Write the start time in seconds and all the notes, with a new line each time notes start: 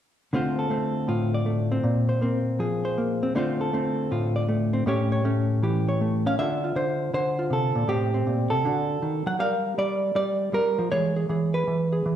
0.33 D3 A3 C4 F4 C5
0.59 A4
0.70 A3 C4
1.08 A2 F4
1.34 D5
1.46 A3
1.72 C4
1.84 A#2
2.09 C5
2.21 A#3 C4
2.59 F3 G#4
2.85 C5
2.98 A#3
3.23 C4
3.35 D3 A3 C4 F4 C5
3.61 A4
3.73 A3 C4
4.11 A2 F4
4.36 D5
4.48 A3
4.73 C4
4.86 A2 A3 C#4 G4 C#5
5.12 C#5
5.25 A3 C#4
5.63 E3 G4
5.89 C#5
6.01 A3
6.26 C#4 F5
6.39 D3 D4 F4 A4 E5
6.64 F4
6.75 D3 C5
7.14 D3 C5
7.39 F4
7.50 C3 A4
7.75 A#2
7.88 A2 A3 C4 G4
8.14 C4
8.27 A#2
8.50 C3 A4
8.65 D3 D4 F#4
9.02 D#3
9.26 F#3 F#5
9.39 G3 G4 A#4 F5
9.78 G3 D5
10.15 G3 D5
10.53 G3 A#4
10.78 F3
10.92 E3 G#3 G#4 C#5
11.16 G#4
11.29 E3 G#4
11.54 B4
11.67 E3
11.93 G#4
12.06 E3